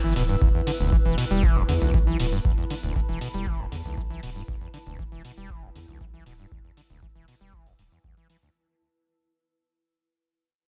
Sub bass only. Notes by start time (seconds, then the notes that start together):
0.04 G1
0.16 D1
0.42 E1
0.80 E1
1.05 E1
1.31 E1
1.69 E2
1.82 B1
2.20 D1
2.45 E1
2.83 E1
3.09 E1
3.34 E1
3.72 E2
3.85 B1
4.23 D1
4.48 E1
4.87 E1
5.12 E1
5.38 E1
5.76 E2
5.88 B1
6.26 D1
6.52 E1
6.90 E1
7.16 E1
7.41 E1
7.79 D1
8.04 B1